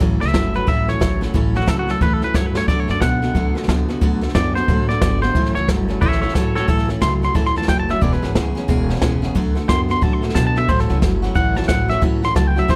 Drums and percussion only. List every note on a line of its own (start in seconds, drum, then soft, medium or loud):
0.01 kick loud
0.01 snare soft
0.22 snare soft
0.28 snare soft
0.34 kick medium
0.34 snare loud
0.34 hi-hat pedal medium
0.55 snare soft
0.68 kick loud
0.68 snare soft
0.88 snare soft
1.01 kick medium
1.01 snare loud
1.01 hi-hat pedal loud
1.22 snare soft
1.34 kick loud
1.34 snare soft
1.55 snare soft
1.61 snare soft
1.68 kick medium
1.68 snare loud
1.68 hi-hat pedal medium
1.88 snare soft
2.01 kick loud
2.01 snare soft
2.22 snare soft
2.34 kick loud
2.34 snare medium
2.34 hi-hat pedal medium
2.55 snare medium
2.68 kick loud
2.68 snare soft
2.89 snare soft
3.01 kick medium
3.01 snare loud
3.01 hi-hat pedal medium
3.22 snare soft
3.35 kick loud
3.35 snare soft
3.56 snare soft
3.63 snare soft
3.68 kick medium
3.68 snare loud
3.68 hi-hat pedal medium
3.89 snare soft
4.02 kick loud
4.02 snare soft
4.22 snare soft
4.29 snare soft
4.35 kick medium
4.35 snare loud
4.35 hi-hat pedal medium
4.56 snare soft
4.68 kick loud
4.68 snare soft
4.90 snare soft
5.01 kick loud
5.01 snare loud
5.01 hi-hat pedal medium
5.23 snare soft
5.35 kick loud
5.35 snare soft
5.45 snare soft
5.56 snare soft
5.68 kick medium
5.68 snare loud
5.68 hi-hat pedal medium
5.89 snare soft
6.02 kick loud
6.02 snare soft
6.12 snare soft
6.23 snare soft
6.29 snare soft
6.35 kick medium
6.35 snare loud
6.35 hi-hat pedal loud
6.56 snare soft
6.68 kick loud
6.68 snare soft
6.79 snare soft
6.89 snare soft
7.02 kick medium
7.02 snare loud
7.02 hi-hat pedal medium
7.23 snare soft
7.35 kick loud
7.35 snare soft
7.46 snare soft
7.56 snare soft
7.62 snare soft
7.68 kick loud
7.68 snare loud
7.68 hi-hat pedal medium
7.89 snare soft
8.02 kick loud
8.02 snare soft
8.12 snare soft
8.23 snare soft
8.35 kick medium
8.35 snare loud
8.35 hi-hat pedal medium
8.56 snare soft
8.69 kick loud
8.69 snare soft
8.89 snare soft
8.96 snare soft
9.02 kick loud
9.02 snare loud
9.02 hi-hat pedal loud
9.23 snare soft
9.36 kick loud
9.36 snare soft
9.56 snare soft
9.69 kick medium
9.69 snare loud
9.69 hi-hat pedal medium
9.90 snare soft
10.02 kick loud
10.02 snare soft
10.23 snare soft
10.29 snare soft
10.35 kick medium
10.35 snare loud
10.35 hi-hat pedal loud
10.56 snare soft
10.69 kick loud
10.69 snare soft
10.79 snare soft
10.89 snare soft
11.02 kick medium
11.02 snare loud
11.02 hi-hat pedal medium
11.23 snare soft
11.36 kick loud
11.36 snare soft
11.56 snare soft
11.63 snare soft
11.69 kick loud
11.69 snare loud
11.69 hi-hat pedal loud
11.90 snare soft
12.02 kick loud
12.02 snare soft
12.23 snare soft
12.36 kick medium
12.36 snare loud
12.36 hi-hat pedal medium
12.57 snare soft
12.69 kick loud
12.69 snare medium